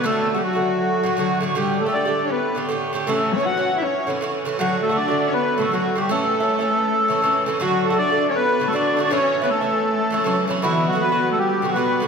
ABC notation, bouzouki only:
X:1
M:4/4
L:1/16
Q:"Swing" 1/4=159
K:D
V:1 name="Bouzouki"
[A,,D,A,F]3 [D,A,F]2 [D,A,F]4- [D,A,F] [A,,D,A,F]2 [A,,D,A,F]2 [A,,D,A,F]2 | [A,,D,A,G]3 [D,A,G]2 [D,A,G]4- [D,A,G] [A,,D,A,G]2 [A,,D,A,G]2 [A,,D,A,G]2 | [A,,E,CE]3 [E,CE]2 [E,CE]4- [E,CE] [A,,E,CE]2 [A,,E,CE]2 [A,,E,CE]2 | [A,,D,A,F]3 [D,A,F]2 [D,A,F]4- [D,A,F] [A,,D,A,F]2 [A,,D,A,F]2 [A,,D,A,F]2 |
[A,,E,CE]3 [E,CE]2 [E,CE]4- [E,CE] [A,,E,CE]2 [A,,E,CE]2 [A,,E,CE]2 | [A,,D,A,F]3 [D,A,F]2 [D,A,F]4- [D,A,F] [A,,D,A,F]2 [A,,D,A,F]2 [A,,D,A,F]2 | [A,,E,CE]3 [E,CE]2 [E,CE]4- [E,CE] [A,,E,CE]2 [A,,E,CE]2 [A,,E,CE]2 | [B,,D,B,F]3 [D,B,F]2 [D,B,F]4- [D,B,F] [B,,D,B,F]2 [B,,D,B,F]2 [B,,D,B,F]2 |]